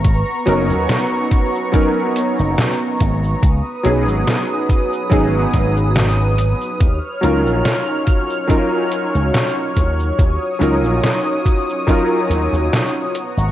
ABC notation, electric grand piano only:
X:1
M:4/4
L:1/8
Q:"Swing 16ths" 1/4=71
K:Ebm
V:1 name="Electric grand piano"
z [G,CDEB]3 [G,CDEB]4 | z [G,CDEA]3 [G,CDEA]4 | z [G,DEFB]3 [G,DEFB]4- | [G,DEFB] [G,DEFB]3 [G,DEFB]3 z |]